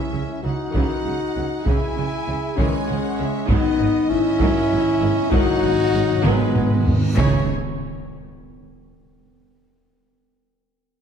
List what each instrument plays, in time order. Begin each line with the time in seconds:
Already playing: viola section D#3 E3, trumpet C#4, french horn section E4, violin section E5
0.13 double bass section C#2, cello section C#3, viola section G#3 C#4
0.43 double bass section C#2, cello section C#3, viola section E3 G#3, trumpet D#4, french horn section F#4, violin section F#5
0.74 double bass section C#2, cello section C#3, viola section D#3 E3, violin section F#5, taiko
1.05 double bass section C#2, cello section C#3, viola section G#3 C#4
1.36 double bass section C#2, cello section C#3, viola section E3 G#3
1.65 double bass section C#2, viola section C#3 E3, cello section C#3, trumpet E4, french horn section G#4, violin section E5 G#5, taiko
1.97 double bass section C#2, cello section C#3, viola section G#3 C#4
2.27 double bass section C#2, cello section C#3, viola section E3 G#3
2.56 double bass section C#2, cello section C#3, viola section D#3 E3, trumpet G#3, french horn section C#4, violin section C#5 G#5, taiko
2.89 double bass section C#2, cello section C#3, viola section G#3 C#4, violin section F#5
3.19 double bass section C#2, cello section C#3, viola section E3 G#3, violin section E5
3.48 double bass section G#1, cello section G#2, viola section D#3 F#3, trumpet B3, french horn section D#4, violin section D#5, taiko
3.64 timpani G#2
3.72 timpani G#2
3.79 double bass section G#1, timpani G#2, cello section G#2, viola section F#3 B3
3.87 timpani G#2
3.94 timpani G#2
4.01 timpani G#2
4.08 double bass section G#1, timpani G#2, cello section G#2, viola section D#3 G#3, trumpet C#4, french horn section E4, violin section E5
4.15 timpani G#2
4.23 timpani G#2
4.31 timpani G#2
4.38 double bass section G#1, timpani G#2, cello section G#2, viola section D#3 F#3, taiko
4.53 timpani G#2
4.61 timpani G#2
4.68 double bass section G#1, timpani G#2, viola section F#3 B3
4.72 cello section G#2, timpani G#2
4.83 timpani G#2
4.90 timpani G#2
4.97 double bass section G#1, timpani G#2
5.01 cello section G#2, timpani G#2, viola section D#3 G#3
5.12 timpani G#2
5.20 timpani G#2
5.27 timpani G#2, trumpet D#4
5.32 double bass section G#1, cello section G#2, timpani G#2, viola section D#3 F#3, french horn section F#4, violin section C#5 F#5, taiko, reverse cymbal
5.42 timpani G#2
5.50 timpani G#2
5.57 timpani G#2
5.63 double bass section G#1, cello section G#2, timpani G#2, viola section F#3 B3
5.72 timpani G#2
5.80 timpani G#2
5.88 timpani G#2
5.93 double bass section G#1, cello section G#2, timpani G#2, viola section D#3 G#3
6.03 timpani G#2
6.11 timpani G#2
6.17 timpani G#2
6.24 double bass section G#1, cello section G#2, timpani G#2, viola section D#3 F#3, trumpet G#3, french horn section B3, violin section B4, taiko mid
6.33 timpani G#2
6.40 timpani G#2
6.48 timpani G#2
6.54 double bass section G#1, timpani G#2, cello section G#2, viola section F#3 B3, taiko low-mid
6.62 timpani G#2
6.71 timpani G#2
6.79 timpani G#2
6.86 double bass section G#1, timpani G#2, cello section G#2, viola section D#3 G#3, taiko low
6.94 timpani G#2
7.02 timpani G#2
7.09 timpani G#2
7.17 double bass section C#2, cello section C#3, timpani C#3, french horn section C#4, viola section D#4 E4, trumpet C#5, violin section C#5 G#5, taiko, impact